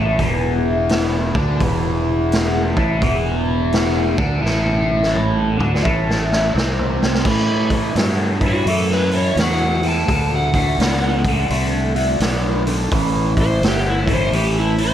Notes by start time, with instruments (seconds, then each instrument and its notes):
Already playing: fingered electric bass A1, overdriven electric guitar A2 A3
0.19 fingered electric bass E1, overdriven electric guitar E2 E3, kick, open hi-hat
0.89 snare, open hi-hat
1.35 fingered electric bass D2, overdriven electric guitar D3 D4, kick
1.60 fingered electric bass E1, overdriven electric guitar E2 E3, kick, open hi-hat
2.32 snare, open hi-hat
2.77 fingered electric bass A1, overdriven electric guitar A2 A3, kick
3.01 fingered electric bass E1, overdriven electric guitar E2 E3, kick, open hi-hat
3.72 snare, open hi-hat
4.17 fingered electric bass D2, overdriven electric guitar D3 D4, kick
4.41 fingered electric bass A1, overdriven electric guitar A2 A3
4.46 snare
4.66 high tom
5.03 snare
5.15 mid tom
5.59 fingered electric bass D2, overdriven electric guitar D3 D4, mid tom
5.75 snare
5.84 fingered electric bass A1, overdriven electric guitar A2 A3, kick
6.10 snare
6.32 snare
6.55 fingered electric bass C2, overdriven electric guitar C3 C4, snare
6.79 floor tom
7.03 snare
7.14 snare
7.25 fingered electric bass A2, overdriven electric guitar A2 E3, kick, crash
7.70 overdriven electric guitar A2 E3, kick, open hi-hat
7.95 fingered electric bass G2, overdriven electric guitar A2 F#3, snare, open hi-hat
8.41 overdriven electric guitar A2 E3, kick, open hi-hat
8.48 electric slide guitar F#4
8.66 fingered electric bass F#2, overdriven electric guitar A2 E3, electric slide guitar A4, open hi-hat
8.91 electric slide guitar B4, snare
9.11 overdriven electric guitar A2 E3, open hi-hat
9.17 electric slide guitar C#5
9.36 fingered electric bass E2, overdriven electric guitar A2 F#3, snare, open hi-hat
9.41 electric slide guitar F#5
9.83 overdriven electric guitar A2 E3, open hi-hat
9.89 electric slide guitar A5
10.08 fingered electric bass D2, overdriven electric guitar D3 A3, kick, open hi-hat
10.36 electric slide guitar F#5
10.54 overdriven electric guitar D3 A3, kick, open hi-hat
10.78 fingered electric bass C#2, overdriven electric guitar D3 B3, snare, open hi-hat
11.25 overdriven electric guitar D3 A3, kick, open hi-hat
11.50 fingered electric bass C2, overdriven electric guitar D3 A3, open hi-hat
11.95 overdriven electric guitar D3 A3, open hi-hat
12.20 fingered electric bass B1, overdriven electric guitar D3 B3, snare, open hi-hat
12.67 overdriven electric guitar D3 A3, open hi-hat
12.92 fingered electric bass A1, overdriven electric guitar A2 E3, kick, open hi-hat
13.37 overdriven electric guitar A2 E3, kick, open hi-hat
13.42 electric slide guitar C5
13.62 fingered electric bass G1, overdriven electric guitar A2 F#3, snare, open hi-hat
13.67 electric slide guitar G4
13.90 electric slide guitar E4
14.08 overdriven electric guitar A2 E3, kick, open hi-hat
14.13 electric slide guitar C5
14.31 fingered electric bass A1, overdriven electric guitar A2 E3, electric slide guitar G4, open hi-hat
14.60 electric slide guitar E4
14.78 overdriven electric guitar A2 E3, open hi-hat
14.84 electric slide guitar C5